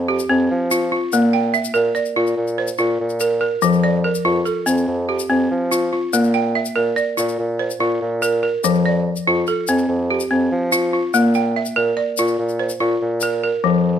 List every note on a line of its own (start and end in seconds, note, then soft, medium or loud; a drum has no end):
0.00 0.20 F2 medium
0.08 0.71 G4 medium
0.19 shaker soft
0.29 0.46 F2 medium
0.29 0.71 C4 medium
0.50 1.00 F3 medium
0.71 0.91 F4 medium
0.71 shaker medium
0.92 1.33 F4 medium
1.12 1.62 A#2 medium
1.12 1.55 A#3 medium
1.12 shaker medium
1.33 1.96 G5 medium
1.54 2.17 E5 medium
1.54 shaker soft
1.64 shaker soft
1.74 1.91 A#2 medium
1.74 2.16 A#4 medium
1.74 shaker soft
1.95 2.58 D5 medium
1.95 shaker soft
2.05 shaker soft
2.16 2.33 A#2 medium
2.16 2.58 F4 medium
2.27 shaker soft
2.37 2.70 A#2 medium
2.47 shaker soft
2.58 3.21 C5 medium
2.67 shaker soft
2.78 2.96 A#2 medium
2.78 3.21 F4 medium
2.78 shaker soft
3.00 3.50 A#2 medium
3.09 shaker soft
3.20 3.40 A#4 medium
3.20 shaker medium
3.41 3.83 A#4 medium
3.62 4.12 F2 medium
3.62 4.04 F3 medium
3.62 shaker medium
3.73 shaker soft
3.84 4.46 D5 medium
4.04 4.67 A#4 medium
4.15 shaker soft
4.25 4.42 F2 medium
4.25 4.67 F4 medium
4.46 5.08 A4 medium
4.46 shaker soft
4.66 4.84 F2 medium
4.66 5.08 C4 medium
4.66 shaker medium
4.78 shaker soft
4.87 5.21 F2 medium
5.09 5.71 G4 medium
5.19 shaker soft
5.30 5.46 F2 medium
5.30 5.71 C4 medium
5.51 6.00 F3 medium
5.71 5.91 F4 medium
5.71 shaker medium
5.93 6.34 F4 medium
6.13 6.63 A#2 medium
6.13 6.55 A#3 medium
6.13 shaker medium
6.24 shaker soft
6.34 6.97 G5 medium
6.55 7.18 E5 medium
6.65 shaker soft
6.76 6.92 A#2 medium
6.76 7.17 A#4 medium
6.96 7.59 D5 medium
6.96 shaker soft
7.17 7.34 A#2 medium
7.17 7.59 F4 medium
7.17 shaker medium
7.29 shaker soft
7.39 7.72 A#2 medium
7.59 8.22 C5 medium
7.70 shaker soft
7.80 7.96 A#2 medium
7.80 8.22 F4 medium
8.01 8.51 A#2 medium
8.22 8.42 A#4 medium
8.22 shaker medium
8.43 8.85 A#4 medium
8.63 9.13 F2 medium
8.63 9.06 F3 medium
8.63 shaker medium
8.75 shaker soft
8.86 9.47 D5 medium
9.16 shaker soft
9.27 9.43 F2 medium
9.27 9.68 F4 medium
9.47 10.10 A4 medium
9.47 shaker soft
9.67 9.84 F2 medium
9.67 10.10 C4 medium
9.67 shaker medium
9.78 shaker soft
9.88 10.21 F2 medium
10.10 10.72 G4 medium
10.20 shaker soft
10.31 10.47 F2 medium
10.31 10.72 C4 medium
10.51 11.01 F3 medium
10.72 10.92 F4 medium
10.72 shaker medium
10.93 11.35 F4 medium
11.14 11.64 A#2 medium
11.14 11.55 A#3 medium
11.14 shaker medium
11.34 11.97 G5 medium
11.34 shaker soft
11.56 12.18 E5 medium
11.65 shaker soft
11.76 11.93 A#2 medium
11.76 12.18 A#4 medium
11.97 12.59 D5 medium
12.17 12.34 A#2 medium
12.17 12.60 F4 medium
12.17 shaker medium
12.28 shaker soft
12.38 12.72 A#2 medium
12.49 shaker soft
12.59 13.22 C5 medium
12.69 shaker soft
12.80 12.97 A#2 medium
12.80 13.22 F4 medium
13.02 13.51 A#2 medium
13.21 13.42 A#4 medium
13.21 shaker medium
13.43 13.85 A#4 medium
13.64 13.99 F2 loud
13.64 13.99 F3 medium